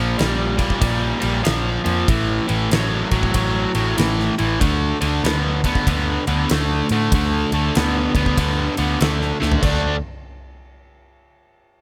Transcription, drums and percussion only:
0.19 snare, ride
0.59 kick, ride
0.70 kick
0.82 kick, ride
1.22 ride
1.45 snare, ride
1.86 ride
2.08 kick, ride
2.49 ride
2.71 snare, ride
3.11 kick, ride
3.23 kick
3.34 kick, ride
3.75 ride
3.98 snare, ride
4.20 snare
4.39 ride
4.61 kick, ride
5.02 ride
5.25 snare, ride
5.64 kick, ride
5.75 kick
5.87 kick, ride
6.27 ride
6.49 snare, ride
6.89 ride
7.12 kick, ride
7.52 ride
7.75 snare, ride
8.15 kick, ride
8.26 kick
8.37 kick, ride
8.77 ride
9.01 snare, ride
9.22 snare
9.42 snare
9.52 floor tom
9.63 kick, crash

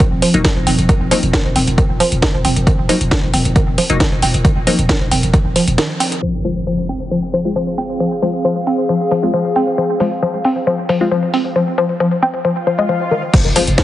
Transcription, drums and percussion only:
0.00 kick, closed hi-hat
0.22 open hi-hat
0.34 closed hi-hat
0.45 kick, snare, closed hi-hat
0.67 open hi-hat
0.79 closed hi-hat
0.89 kick, closed hi-hat
1.11 open hi-hat
1.23 closed hi-hat
1.33 kick, snare, closed hi-hat
1.56 open hi-hat
1.67 closed hi-hat
1.78 kick, closed hi-hat
2.00 open hi-hat
2.12 closed hi-hat
2.22 kick, snare, closed hi-hat
2.45 open hi-hat
2.56 closed hi-hat
2.67 kick, closed hi-hat
2.89 open hi-hat
3.01 closed hi-hat
3.11 kick, snare, closed hi-hat
3.34 open hi-hat
3.45 closed hi-hat
3.56 kick, closed hi-hat
3.78 open hi-hat
3.90 closed hi-hat
4.00 kick, snare, closed hi-hat
4.22 open hi-hat
4.34 closed hi-hat
4.45 kick, closed hi-hat
4.67 open hi-hat
4.79 closed hi-hat
4.89 kick, snare, closed hi-hat
5.11 open hi-hat
5.23 closed hi-hat
5.34 kick, closed hi-hat
5.56 open hi-hat
5.68 closed hi-hat
5.78 snare, closed hi-hat
6.00 open hi-hat
6.12 closed hi-hat
6.22 crash
6.45 open hi-hat
6.89 open hi-hat
7.34 open hi-hat
7.78 open hi-hat
8.22 open hi-hat
8.67 open hi-hat
9.11 open hi-hat
9.56 open hi-hat
10.00 open hi-hat
10.45 open hi-hat
10.89 open hi-hat
11.34 open hi-hat
13.34 kick, closed hi-hat, crash
13.56 open hi-hat
13.67 closed hi-hat
13.78 kick, snare, closed hi-hat

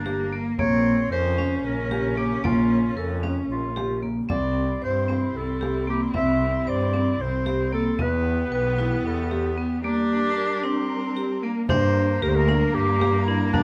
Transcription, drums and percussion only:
0.06 frame drum
0.59 frame drum
1.12 frame drum
1.39 frame drum
1.91 frame drum
2.45 frame drum
3.24 frame drum
3.51 frame drum
3.77 frame drum
4.03 frame drum
4.30 frame drum
4.83 frame drum
5.10 frame drum
5.63 frame drum
6.14 frame drum
6.67 frame drum
6.94 frame drum
7.46 frame drum
7.99 frame drum
8.52 frame drum
8.79 frame drum
9.31 frame drum
11.69 frame drum
12.22 frame drum
12.48 frame drum
13.01 frame drum
13.54 frame drum

